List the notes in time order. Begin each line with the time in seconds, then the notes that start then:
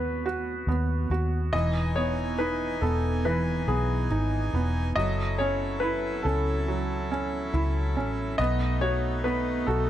Already playing: D#2 B3 F#4 B4
0.26 F#4
0.67 D#2 B3
1.10 D#2 F#4
1.53 E1 E3 D#4 D#5 G#5
1.96 B3 C#5
2.38 D#4 B4
2.81 E1 B3 A4
3.25 E3 B4
3.67 B1 B3 G#4
4.10 G#1 D#4
4.53 E1 B3
4.96 F#1 F#3 E4 A4 D#5
5.38 C#4 C#5
5.80 E4 B4
6.22 C#2 C#4 A4
6.68 F#3
7.11 C#4
7.54 C#2 E4
7.97 A1 C#4
8.38 B1 A3 B3 D#4 D#5
8.81 F#4 C#5
9.24 B3 B4
9.66 B1 F#4 A4